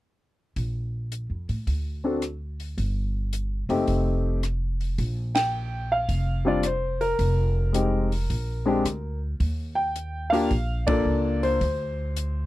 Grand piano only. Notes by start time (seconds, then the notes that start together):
2.04 C4 D4 F#4 A4
3.69 A3 C4 D#4 G4
5.35 G5
5.92 F5
6.45 G3 C4 D4 F4 D5
6.66 C5
7.01 A#4
7.73 G#3 C4 D#4 G4
8.66 G#3 C4 D4 G4
9.75 G5
10.30 A#3 D4 F4 F5
10.34 G4
10.87 A#3 D4 F4 A4 D5
11.43 C5